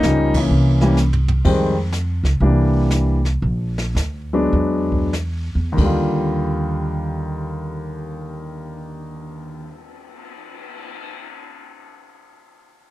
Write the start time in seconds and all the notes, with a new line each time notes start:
Already playing: D#4
0.03 C#2 F3 G3 A#3 C#4, snare, hi-hat pedal
0.34 E3 A#3 C#4, kick, ride
0.49 C2, brush sweep
0.81 E3 G3 A#3 C#4, snare
0.97 snare, hi-hat pedal
1.13 floor tom
1.28 floor tom
1.45 F2 D#3 G3 G#3 C4, brush sweep, kick, crash
1.93 snare, hi-hat pedal
2.24 C#2, snare
2.40 C2 E3 G3 A#3 D4, brush sweep, kick
2.91 snare, hi-hat pedal
3.25 snare
3.42 A#1, brush sweep, kick
3.78 snare
3.95 D2, snare, hi-hat pedal
4.33 F#3 G#3 B3 D4
4.52 E2, brush sweep, kick
4.92 kick
5.13 snare, hi-hat pedal
5.55 E2
5.72 D#2
5.77 D#2 D3, kick, crash
5.81 G3 F4
6.23 cymbal swell